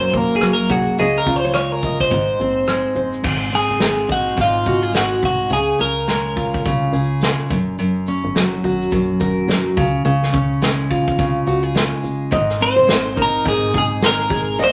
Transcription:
Already playing: steel-string acoustic guitar F#2 F#3 A#3 C#4, nylon-string guitar A#4, clean electric guitar C5
0.13 analog synth bass F1, steel-string acoustic guitar A#3, kick, shaker
0.17 clean electric guitar A#4
0.30 shaker
0.36 clean electric guitar G#4
0.40 analog synth bass F#1, steel-string acoustic guitar F#3, cross-stick, shaker
0.53 clean electric guitar A#4
0.68 analog synth bass C2, clean electric guitar F#4, nylon-string guitar G#4, kick, shaker
0.98 analog synth bass C#2, steel-string acoustic guitar C#3, clean electric guitar G#4, nylon-string guitar D#5, shaker
1.18 clean electric guitar A#4
1.26 analog synth bass C#2, steel-string acoustic guitar F4, kick, shaker
1.36 clean electric guitar C5
1.43 nylon-string guitar C#5, shaker
1.53 steel-string acoustic guitar G#3, clean electric guitar C#5, cross-stick, shaker
1.72 clean electric guitar A#4
1.82 nylon-string guitar D#5, kick, shaker
2.00 clean electric guitar C5, kick
2.10 analog synth bass G#1, steel-string acoustic guitar G#2, kick, shaker
2.39 analog synth bass A#1, steel-string acoustic guitar C4, shaker
2.67 steel-string acoustic guitar G#3, cross-stick, shaker
2.95 analog synth bass F#1, nylon-string guitar C5, shaker
3.13 shaker
3.23 analog synth bass G#1, steel-string acoustic guitar G#2, kick, crash, tambourine
3.52 steel-string acoustic guitar C4, clean electric guitar G#4, tambourine, shaker
3.70 analog synth bass F#1
3.80 analog synth bass G#1, steel-string acoustic guitar G#3, snare, tambourine, shaker
4.08 analog synth bass A#1, steel-string acoustic guitar D#4, clean electric guitar F#4, kick, tambourine, shaker
4.37 analog synth bass G#1, steel-string acoustic guitar G#2, kick, tambourine, shaker
4.41 clean electric guitar F4
4.65 analog synth bass F#1, steel-string acoustic guitar F#4, kick, tambourine, shaker
4.82 steel-string acoustic guitar G#4
4.93 analog synth bass G#1, steel-string acoustic guitar G#3, clean electric guitar F#4, snare, tambourine, shaker
5.22 analog synth bass C2, clean electric guitar F#4, kick, tambourine, shaker
5.50 analog synth bass C#2, steel-string acoustic guitar C#3, clean electric guitar G#4, tambourine, shaker
5.79 analog synth bass C#2, steel-string acoustic guitar C#4, clean electric guitar A#4, tambourine, shaker
6.08 steel-string acoustic guitar G#3, snare, tambourine, shaker
6.36 steel-string acoustic guitar F4, kick, tambourine, shaker
6.54 kick
6.65 analog synth bass C2, steel-string acoustic guitar C#3, kick, tambourine, shaker
6.93 analog synth bass C#2, steel-string acoustic guitar G#4, tambourine, shaker
7.21 steel-string acoustic guitar G#3, snare, tambourine, shaker
7.50 analog synth bass F#1, steel-string acoustic guitar F#2, kick, tambourine, shaker
7.79 steel-string acoustic guitar F#2, tambourine, shaker
8.07 steel-string acoustic guitar C#4, tambourine, shaker
8.24 analog synth bass G#1
8.35 analog synth bass F#1, steel-string acoustic guitar F#3, snare, tambourine, shaker
8.64 analog synth bass G#1, steel-string acoustic guitar F#4, kick, tambourine, shaker
8.82 shaker
8.91 analog synth bass A#1, steel-string acoustic guitar F#2, kick, tambourine, shaker
9.20 analog synth bass G#1, steel-string acoustic guitar A#4, kick, tambourine, shaker
9.48 analog synth bass F#1, steel-string acoustic guitar F#3, snare, tambourine, shaker
9.77 analog synth bass C#2, steel-string acoustic guitar C#3, kick, tambourine, shaker
10.05 analog synth bass C#2, steel-string acoustic guitar C#3, shaker
10.22 snare
10.33 analog synth bass C#2, steel-string acoustic guitar C#4, kick, tambourine, shaker
10.62 steel-string acoustic guitar G#3, snare, tambourine, shaker
10.90 steel-string acoustic guitar F4, kick, tambourine, shaker
11.08 kick
11.18 analog synth bass C2, steel-string acoustic guitar C#3, kick, tambourine, shaker
11.47 analog synth bass C#2, steel-string acoustic guitar F#4, tambourine, shaker
11.63 steel-string acoustic guitar G#4
11.75 steel-string acoustic guitar G#3, snare, tambourine, shaker
12.03 analog synth bass F#1, tambourine, shaker
12.31 analog synth bass G#1, steel-string acoustic guitar G#2, nylon-string guitar D#5, kick, shaker
12.49 snare
12.60 steel-string acoustic guitar C4, clean electric guitar C5, tambourine, shaker
12.76 analog synth bass F#1, nylon-string guitar C5, shaker
12.87 analog synth bass G#1, steel-string acoustic guitar G#3, snare, tambourine, shaker
13.16 analog synth bass A#1, steel-string acoustic guitar D#4, nylon-string guitar A#4, kick, shaker
13.22 clean electric guitar A#4
13.45 analog synth bass G#1, steel-string acoustic guitar G#2, clean electric guitar G#4, kick, tambourine, shaker
13.74 analog synth bass F#1, steel-string acoustic guitar G#4, kick, tambourine, shaker
13.78 clean electric guitar G#4
14.02 analog synth bass G#1, steel-string acoustic guitar G#3, snare, tambourine, shaker
14.06 clean electric guitar A#4
14.30 analog synth bass G#1, nylon-string guitar G#4, kick, tambourine, shaker
14.59 analog synth bass A#1, steel-string acoustic guitar A#2, nylon-string guitar D#5, tambourine, shaker
14.64 clean electric guitar C5

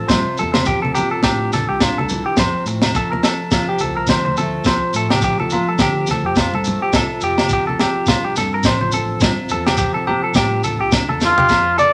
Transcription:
Already playing: steel-string acoustic guitar F3 C4 F4
0.09 fingered electric bass G2, steel-string acoustic guitar C3 F4, clean electric guitar C5, kick, snare, low agogo, shekere
0.13 low conga
0.37 fingered electric bass E2, steel-string acoustic guitar C4, clean electric guitar A4, low conga, shekere
0.54 clean electric guitar C5, snare, high conga, low agogo
0.65 steel-string acoustic guitar F3, clean electric guitar G4, kick, shekere
0.82 fingered electric bass C3, clean electric guitar A4, high conga
0.94 clean electric guitar G4, low conga, low agogo, shekere
1.11 clean electric guitar A4
1.23 steel-string acoustic guitar G2, fingered electric bass A2, clean electric guitar G4, kick, snare, low agogo, shekere
1.52 fingered electric bass A1, steel-string acoustic guitar F4, clean electric guitar A4, snare, high conga, shekere
1.69 fingered electric bass C2, clean electric guitar G4
1.80 fingered electric bass C2, steel-string acoustic guitar D3, clean electric guitar F4, kick, snare, low agogo, shekere
1.97 fingered electric bass C2, clean electric guitar A4, high conga
2.09 steel-string acoustic guitar E3, low conga, shekere
2.26 clean electric guitar G4
2.37 fingered electric bass F2, steel-string acoustic guitar F2 C4, clean electric guitar C5, kick, snare, low conga, low agogo, shekere
2.65 fingered electric bass A2, steel-string acoustic guitar A3, muted clean electric guitar stroke, shekere
2.82 snare, high conga, low agogo
2.95 steel-string acoustic guitar F3, clean electric guitar A4, kick, shekere
3.12 clean electric guitar A#4, high conga
3.23 clean electric guitar A4, snare, low agogo, shekere
3.51 steel-string acoustic guitar C3, fingered electric bass F3, clean electric guitar F4, kick, snare, low agogo, shekere
3.69 clean electric guitar G4
3.79 fingered electric bass C2, steel-string acoustic guitar C4, clean electric guitar A4, high conga, shekere
3.97 clean electric guitar A#4
4.07 fingered electric bass D2, steel-string acoustic guitar F3, clean electric guitar C5, kick, snare, low agogo, shekere
4.25 clean electric guitar C5, high conga
4.37 steel-string acoustic guitar A3, clean electric guitar A4, low conga, shekere
4.64 fingered electric bass C2, steel-string acoustic guitar F2 C4, clean electric guitar C5, kick, snare, low conga, low agogo, shekere
4.93 fingered electric bass A2, steel-string acoustic guitar A3, clean electric guitar A4, shekere
5.10 clean electric guitar G4, snare, high conga, low agogo
5.21 steel-string acoustic guitar F3, clean electric guitar G4, kick, shekere
5.38 fingered electric bass F3, clean electric guitar A4, high conga
5.50 clean electric guitar F4, low conga, low agogo, shekere
5.69 clean electric guitar A4
5.78 fingered electric bass D3, clean electric guitar G4, muted steel-string acoustic guitar stroke, kick, snare, low agogo, shekere
6.07 fingered electric bass D2, steel-string acoustic guitar C4, snare, shekere
6.11 clean electric guitar A4, high conga
6.23 fingered electric bass F2, clean electric guitar G4
6.36 fingered electric bass F2, steel-string acoustic guitar F3, clean electric guitar F4, kick, snare, low agogo, shekere
6.51 fingered electric bass G2, clean electric guitar A4, high conga
6.64 steel-string acoustic guitar A3, low conga, shekere
6.82 clean electric guitar G4
6.93 fingered electric bass C2, steel-string acoustic guitar C3 F4, clean electric guitar A4, kick, snare, low agogo, shekere
6.97 low conga
7.21 fingered electric bass F2, steel-string acoustic guitar C4, clean electric guitar G4, shekere
7.38 snare, high conga, low agogo
7.49 steel-string acoustic guitar F3, kick, shekere
7.53 clean electric guitar G4
7.67 clean electric guitar A4, high conga
7.79 clean electric guitar G4, snare, low conga, low agogo
8.06 steel-string acoustic guitar G2, fingered electric bass C3, clean electric guitar F4, kick, snare, low agogo, shekere
8.24 clean electric guitar G4
8.36 fingered electric bass G2, steel-string acoustic guitar F4, clean electric guitar A4, snare, high conga, shekere
8.54 clean electric guitar A#4
8.63 fingered electric bass A1, steel-string acoustic guitar F3, clean electric guitar C5, kick, snare, low agogo, shekere
8.81 clean electric guitar C5, high conga
8.92 steel-string acoustic guitar C4, clean electric guitar A4, low conga, shekere
9.20 fingered electric bass G2, steel-string acoustic guitar C3 F4, muted clean electric guitar stroke, kick, snare, low conga, low agogo, shekere
9.49 fingered electric bass E2, steel-string acoustic guitar C4, clean electric guitar A4, low conga, shekere
9.67 clean electric guitar G4, snare, high conga, low agogo
9.77 steel-string acoustic guitar F3, clean electric guitar G4, kick, shekere
9.94 fingered electric bass C3, clean electric guitar A4
10.07 clean electric guitar G4, low conga, low agogo
10.24 clean electric guitar A4
10.33 steel-string acoustic guitar G2, fingered electric bass A2, clean electric guitar G4, kick, snare, low agogo, shekere
10.63 fingered electric bass A1, steel-string acoustic guitar F4, clean electric guitar A4, high conga, shekere
10.80 fingered electric bass C2, clean electric guitar G4
10.92 fingered electric bass C2, steel-string acoustic guitar D3, kick, snare, low agogo, shekere
11.07 fingered electric bass E2, clean electric guitar A4, high conga
11.20 steel-string acoustic guitar E3, snare, low conga, shekere
11.25 trumpet F4
11.38 clean electric guitar G4, floor tom
11.49 steel-string acoustic guitar F2, fingered electric bass F2, muted steel-string acoustic guitar stroke, muted clean electric guitar stroke, kick, snare, low agogo, shekere
11.78 clean electric guitar A4, steel-string acoustic guitar A4, trumpet D5, high conga, shekere

